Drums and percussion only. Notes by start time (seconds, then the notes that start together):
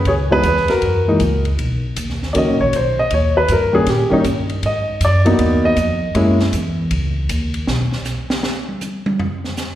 0.05 kick, ride
0.43 kick, hi-hat pedal, ride
0.57 snare
0.68 snare, ride
0.82 kick, ride
1.20 kick, hi-hat pedal, ride
1.45 ride
1.59 kick, ride
1.96 kick, hi-hat pedal, ride
2.10 snare
2.23 snare
2.35 kick, ride
2.73 kick, hi-hat pedal, ride
3.11 kick, ride
3.48 kick, hi-hat pedal, ride
3.87 kick, snare, ride
4.12 kick
4.24 kick, hi-hat pedal, ride
4.50 ride
4.63 kick, ride
5.01 kick, hi-hat pedal, ride
5.26 ride
5.39 kick, ride
5.77 kick, hi-hat pedal, ride
6.15 kick, ride
6.40 snare
6.53 kick, hi-hat pedal, ride
6.91 kick, ride
7.29 kick, hi-hat pedal, ride
7.54 ride
7.67 snare
7.92 snare
8.05 snare, hi-hat pedal
8.30 snare
8.43 snare
8.69 high tom
8.81 hi-hat pedal, high tom
9.06 high tom
9.20 floor tom
9.44 snare
9.57 snare, hi-hat pedal